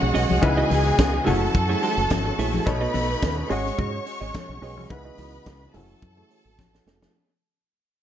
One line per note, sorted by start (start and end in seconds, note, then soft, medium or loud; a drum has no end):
0.00 0.11 B1 loud
0.00 0.39 G#3 medium
0.00 0.42 G#3 medium
0.00 0.41 C#4 medium
0.00 0.40 F#4 medium
0.00 0.41 F#4 medium
0.00 0.39 G#4 medium
0.00 0.40 C#5 medium
0.00 0.40 D#5 medium
0.00 0.40 F#5 medium
0.00 muted clean electric guitar stroke soft
0.14 0.26 B1 loud
0.14 0.29 C#4 medium
0.14 0.29 F#4 medium
0.14 0.29 G#4 loud
0.14 0.28 D#5 loud
0.14 open hi-hat medium
0.29 0.39 C2 medium
0.29 0.42 C#4 medium
0.29 0.42 F#4 medium
0.29 0.42 G#4 medium
0.29 0.42 D#5 medium
0.29 high conga medium
0.41 0.62 C#2 medium
0.41 1.26 C#3 medium
0.41 2.64 E3 medium
0.41 1.26 G#3 medium
0.41 1.25 B3 medium
0.41 1.26 D#4 medium
0.41 1.24 E4 medium
0.41 1.25 F#4 medium
0.41 1.25 G#4 medium
0.41 1.27 B4 medium
0.41 1.25 D#5 medium
0.41 1.25 G#5 medium
0.41 kick loud
0.41 closed hi-hat medium
0.57 0.70 E4 medium
0.57 0.70 F#4 medium
0.57 0.71 B4 medium
0.57 0.71 D#5 medium
0.70 0.90 C#2 loud
0.70 0.86 E4 medium
0.70 0.85 F#4 medium
0.70 0.85 B4 medium
0.70 0.84 D#5 medium
0.70 open hi-hat medium
0.70 muted conga medium
0.86 muted clean electric guitar stroke soft
0.98 1.18 C#2 loud
0.98 muted clean electric guitar stroke soft
0.98 kick loud
0.98 snare loud
0.98 closed hi-hat medium
0.98 high conga medium
1.13 muted clean electric guitar stroke soft
1.25 1.46 F#1 medium
1.25 2.63 F#3 medium
1.25 2.65 F#3 medium
1.25 1.46 A3 medium
1.25 2.63 C#4 medium
1.25 2.63 E4 medium
1.25 1.41 E4 medium
1.25 2.64 F#4 medium
1.25 2.66 F#4 medium
1.25 1.40 G#4 loud
1.25 2.63 A4 medium
1.25 2.65 A4 medium
1.25 2.64 A4 medium
1.25 1.40 C#5 medium
1.25 2.63 A5 medium
1.25 open hi-hat medium
1.25 low conga medium
1.41 muted clean electric guitar stroke soft
1.55 1.74 F#2 loud
1.55 muted clean electric guitar stroke soft
1.55 kick loud
1.55 closed hi-hat medium
1.55 muted conga medium
1.69 1.81 A3 medium
1.69 1.82 E4 medium
1.69 1.82 G#4 medium
1.69 1.82 C#5 medium
1.82 2.03 A3 loud
1.82 1.97 E4 medium
1.82 1.97 G#4 medium
1.82 1.96 C#5 medium
1.82 open hi-hat medium
1.97 2.07 F#1 medium
1.97 muted clean electric guitar stroke soft
2.10 2.30 G#1 loud
2.10 muted clean electric guitar stroke soft
2.10 kick medium
2.10 snare loud
2.10 closed hi-hat medium
2.10 high conga medium
2.25 muted clean electric guitar stroke medium
2.38 2.58 A#1 loud
2.38 2.52 A3 medium
2.38 2.52 E4 medium
2.38 2.51 G#4 medium
2.38 2.51 C#5 medium
2.38 open hi-hat medium
2.52 2.65 A3 medium
2.52 2.66 E4 medium
2.52 2.66 G#4 medium
2.52 2.66 C#5 medium
2.52 high conga medium
2.65 2.86 B1 loud
2.65 3.50 B2 medium
2.65 3.50 A3 medium
2.65 3.50 B3 medium
2.65 3.50 D#4 medium
2.65 3.51 A4 medium
2.65 3.48 B4 medium
2.65 3.49 C#5 medium
2.65 3.48 B5 loud
2.65 kick loud
2.65 closed hi-hat medium
2.65 muted conga soft
2.81 2.92 B3 medium
2.81 2.93 F#4 medium
2.81 2.93 A4 medium
2.81 2.93 D#5 medium
2.94 3.14 B1 loud
2.94 3.10 B3 medium
2.94 3.08 F#4 medium
2.94 3.08 A4 medium
2.94 3.07 D#5 medium
2.94 open hi-hat medium
2.94 muted conga medium
3.09 muted clean electric guitar stroke soft
3.22 3.42 D#2 loud
3.22 muted clean electric guitar stroke soft
3.22 kick loud
3.22 snare loud
3.22 closed hi-hat medium
3.22 high conga medium
3.37 muted clean electric guitar stroke soft
3.50 3.70 G#1 loud
3.50 4.87 G#3 medium
3.50 4.89 G#3 medium
3.50 3.69 C#4 medium
3.50 4.89 C#4 medium
3.50 3.65 F#4 medium
3.50 4.89 F#4 medium
3.50 4.87 G#4 medium
3.50 3.64 G#4 loud
3.50 4.87 C#5 medium
3.50 4.88 C#5 medium
3.50 3.64 D#5 medium
3.50 4.88 D#5 medium
3.50 4.89 F#5 medium
3.50 4.87 C#6 medium
3.50 open hi-hat medium
3.65 muted clean electric guitar stroke soft
3.65 snare soft
3.78 3.98 G#2 loud
3.78 3.98 C#4 medium
3.78 3.93 F#4 medium
3.78 3.93 G#4 medium
3.78 3.92 D#5 loud
3.78 kick loud
3.78 closed hi-hat medium
3.78 muted conga medium
3.78 low conga medium
3.94 muted clean electric guitar stroke soft
4.06 muted clean electric guitar stroke soft
4.06 open hi-hat medium
4.21 4.30 G#1 medium
4.21 4.33 C#4 medium
4.21 4.34 F#4 medium
4.21 4.34 G#4 medium
4.21 4.34 D#5 medium
4.34 muted clean electric guitar stroke soft
4.34 kick loud
4.34 snare loud
4.34 closed hi-hat medium
4.34 high conga medium
4.49 4.58 B1 medium
4.49 muted clean electric guitar stroke soft
4.62 4.77 B1 loud
4.62 4.77 C#4 medium
4.62 4.77 F#4 medium
4.62 4.76 G#4 loud
4.62 4.76 D#5 medium
4.62 open hi-hat medium
4.77 4.86 C2 medium
4.77 4.90 C#4 medium
4.77 4.89 F#4 medium
4.77 4.91 G#4 medium
4.77 4.90 D#5 medium
4.77 high conga medium
4.90 5.10 C#2 loud
4.90 5.74 C#3 medium
4.90 5.73 C#3 medium
4.90 7.12 E3 medium
4.90 5.74 G#3 medium
4.90 5.74 B3 medium
4.90 5.75 D#4 medium
4.90 5.74 E4 medium
4.90 5.73 F#4 medium
4.90 5.74 F#4 medium
4.90 5.75 B4 medium
4.90 5.73 B4 medium
4.90 5.73 D#5 medium
4.90 5.73 B5 medium
4.90 kick loud
4.90 closed hi-hat medium
4.90 muted conga soft
5.05 5.17 E4 medium
5.05 5.17 F#4 medium
5.05 5.18 B4 medium
5.05 5.18 D#5 medium
5.18 5.38 C#2 loud
5.18 5.34 E4 medium
5.18 5.33 F#4 medium
5.18 5.32 B4 medium
5.18 5.32 D#5 medium
5.18 open hi-hat medium
5.18 muted conga medium
5.33 muted clean electric guitar stroke soft
5.46 5.66 C#2 loud
5.46 muted clean electric guitar stroke soft
5.46 kick loud
5.46 snare loud
5.46 closed hi-hat medium
5.46 high conga medium
5.61 muted clean electric guitar stroke soft
5.73 5.94 F#1 loud
5.73 7.11 F#3 medium
5.73 7.13 F#3 medium
5.73 5.93 A3 medium
5.73 7.11 C#4 medium
5.73 5.89 E4 medium
5.73 7.12 E4 medium
5.73 7.13 F#4 medium
5.73 7.12 F#4 medium
5.73 5.89 G#4 loud
5.73 7.13 A4 medium
5.73 7.12 A4 medium
5.73 5.88 C#5 loud
5.73 7.12 A5 medium
5.73 open hi-hat medium
5.73 low conga medium
5.90 muted clean electric guitar stroke soft
6.02 6.22 F#2 medium
6.02 muted clean electric guitar stroke soft
6.02 kick loud
6.02 closed hi-hat medium
6.02 muted conga medium
6.17 6.29 A3 medium
6.17 6.29 E4 medium
6.17 6.30 G#4 medium
6.17 6.30 C#5 medium
6.30 6.50 A3 medium
6.30 6.45 E4 medium
6.30 6.45 G#4 medium
6.30 6.44 C#5 medium
6.30 open hi-hat medium
6.45 6.59 G#1 medium
6.45 muted clean electric guitar stroke soft
6.59 6.78 A1 medium
6.59 muted clean electric guitar stroke soft
6.59 kick medium
6.59 snare medium
6.59 high conga medium
6.74 muted clean electric guitar stroke soft
6.74 snare medium
6.86 7.05 F1 medium
6.86 7.02 A3 medium
6.86 7.02 E4 medium
6.86 7.01 G#4 medium
6.86 7.01 C#5 medium
6.86 snare medium
7.02 7.16 A3 medium
7.02 7.16 E4 medium
7.02 7.16 G#4 medium
7.02 snare loud
7.02 high conga medium